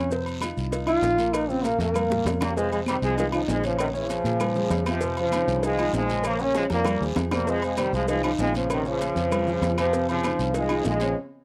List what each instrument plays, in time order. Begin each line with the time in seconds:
Already playing: fingered electric bass F2, trombone C#4
0.10 grand piano C3 C4 C5, cowbell, long guiro, maracas
0.26 high conga, low agogo, maracas
0.41 grand piano D#3 D#4 F4, cowbell, high conga, low timbale, low agogo, short guiro, claves, maracas
0.57 fingered electric bass C2, high conga, short guiro, maracas
0.71 grand piano D#3 D#4 F4, cowbell, high conga, low agogo, long guiro, maracas
0.86 grand piano D#3 D#4 F4, trombone F4, high conga, low agogo, claves, maracas
1.02 fingered electric bass A#1, cowbell, high conga, low timbale, short guiro, maracas
1.17 grand piano A#2 A#3 A#4, low agogo, short guiro, maracas
1.33 trombone D#4, cowbell, high conga, low agogo, long guiro, claves, maracas
1.48 grand piano C#3 C#4 F4, trombone C4, high conga, maracas
1.63 grand piano A#2 A#3 A#4, trombone A#3, cowbell, high conga, low timbale, low agogo, short guiro, maracas
1.78 fingered electric bass F2, grand piano A#2 A#3 A#4, trombone A#3, cowbell, short guiro, maracas
1.94 cowbell, high conga, low conga, low agogo, long guiro, claves, maracas
2.10 grand piano A#2 A#3 A#4, high bongo, high conga, low conga, maracas
2.25 fingered electric bass F2, grand piano C#3 C#4 F4, cowbell, high bongo, high conga, low timbale, low agogo, short guiro, maracas
2.40 trombone section G3 A#3, cowbell, low bongo, high conga, low agogo, short guiro, claves, maracas
2.56 grand piano C3 C4 C5, trombone section F3 G#3, cowbell, high conga, long guiro, maracas
2.71 trombone section F3 G#3, high conga, low agogo, maracas
2.86 grand piano C3 C4 C5, trombone section D#3 G3, cowbell, high conga, low timbale, low agogo, short guiro, claves, maracas
3.02 fingered electric bass C2, trombone section F3 G#3, high conga, short guiro, maracas
3.17 grand piano D#3 D#4 F4, trombone section F3 G#3, cowbell, high conga, low agogo, long guiro, maracas
3.32 trombone section C#3 F3, grand piano D#3 D#4 F4, high conga, low agogo, claves, maracas
3.48 fingered electric bass A#1, trombone section F3 G#3, cowbell, high conga, low timbale, short guiro, maracas
3.63 grand piano C#3 C#4 C#5, trombone section C#3 F3, low agogo, short guiro, maracas
3.79 trombone section C3 D#3, cowbell, high conga, low agogo, long guiro, claves, maracas
3.93 grand piano C#3 C#4 C#5, trombone section C#3 F3, high conga, maracas
4.09 cowbell, high conga, low timbale, low agogo, short guiro, maracas
4.24 fingered electric bass A#2, grand piano F3 F4 G#4, cowbell, high conga, short guiro, maracas
4.40 cowbell, high conga, low conga, low agogo, long guiro, claves, maracas
4.55 grand piano F3 F4 G#4, high conga, low conga, maracas
4.70 fingered electric bass F2, cowbell, high conga, low timbale, low agogo, short guiro, maracas
4.86 grand piano C3 C4 C5, trombone section C3 F3, cowbell, high conga, low agogo, short guiro, claves, maracas
5.01 grand piano C3 C4 C5, cowbell, long guiro, maracas
5.17 trombone section C#3 F3, high conga, low agogo, maracas
5.32 grand piano D#3 C4 C5, cowbell, high conga, low timbale, low agogo, short guiro, claves, maracas
5.47 fingered electric bass C2, short guiro, maracas
5.63 grand piano D#3 D#4 F4, trombone section F3 G#3, cowbell, high conga, low agogo, long guiro, maracas
5.78 grand piano D#3 D#4 F4, high conga, low agogo, claves, maracas
5.93 fingered electric bass A#1, trombone section F3 G#3, cowbell, high conga, low timbale, short guiro, maracas
6.09 grand piano C#3 C#4 C#5, low agogo, short guiro, maracas
6.24 trombone section F3 A#3, cowbell, high conga, low agogo, long guiro, claves, maracas
6.39 grand piano C#3 C#4 C#5, trombone section A#3 C#4, high conga, maracas
6.54 trombone section F3 G#3, cowbell, high bongo, high conga, low timbale, low agogo, short guiro, maracas
6.70 fingered electric bass F2, grand piano F3 F4 A#4, trombone section G3 A#3, cowbell, high bongo, high conga, short guiro, maracas
6.85 cowbell, low bongo, high conga, low conga, low agogo, long guiro, claves, maracas
7.00 fingered electric bass D#2, grand piano F3 F4 G#4, high conga, maracas
7.15 fingered electric bass F2, cowbell, low bongo, high conga, low timbale, low agogo, short guiro, maracas
7.31 grand piano C3 C4 C5, trombone section G3 A#3, cowbell, low bongo, high conga, low agogo, short guiro, claves, maracas
7.47 grand piano C3 C4 C5, trombone section F3 G#3, cowbell, high conga, long guiro, maracas
7.62 trombone section F3 G#3, high conga, low agogo, maracas
7.77 grand piano C3 C4 C5, trombone section D#3 G3, cowbell, high conga, low timbale, low agogo, short guiro, claves, maracas
7.93 fingered electric bass C2, trombone section F3 G#3, high conga, short guiro, maracas
8.08 grand piano D#3 D#4 F4, trombone section F3 G#3, cowbell, high conga, low agogo, long guiro, maracas
8.23 trombone section C#3 F3, grand piano D#3 D#4 F4, high conga, low agogo, claves, maracas
8.39 fingered electric bass A#1, trombone section F3 G#3, cowbell, high conga, low timbale, short guiro, maracas
8.54 grand piano C#3 C#4 C#5, trombone section C#3 F3, high conga, low agogo, short guiro, maracas
8.70 trombone section C3 D#3, cowbell, high conga, low agogo, long guiro, claves, maracas
8.85 grand piano C#3 C#4 C#5, trombone section C#3 F3, high conga, maracas
9.01 cowbell, high conga, low timbale, low agogo, short guiro, maracas
9.15 fingered electric bass F2, grand piano F3 F4 G#4, cowbell, high conga, short guiro, maracas
9.32 cowbell, high conga, low conga, low agogo, long guiro, claves, maracas
9.47 grand piano F3 F4 G#4, high conga, low conga, maracas
9.62 fingered electric bass F2, cowbell, high conga, low timbale, low agogo, short guiro, maracas
9.77 grand piano C3 C4 C5, trombone section C3 F3, cowbell, high conga, low agogo, short guiro, claves, maracas
9.93 grand piano C3 C4 C5, cowbell, long guiro, maracas
10.09 trombone section C#3 F3, high conga, low agogo, maracas
10.23 grand piano D#3 C4 C5, cowbell, high conga, low timbale, low agogo, short guiro, claves, maracas
10.39 fingered electric bass C2, high conga, short guiro, maracas
10.54 grand piano D#3 D#4 F4, trombone section F3 G#3, cowbell, high conga, low agogo, long guiro, maracas
10.69 grand piano D#3 D#4 F4, high conga, low agogo, claves, maracas
10.84 fingered electric bass A#1, trombone section F3 G#3, cowbell, high conga, low timbale, short guiro, maracas
11.00 grand piano C#3 C#4 C#5, high conga, low agogo, short guiro, maracas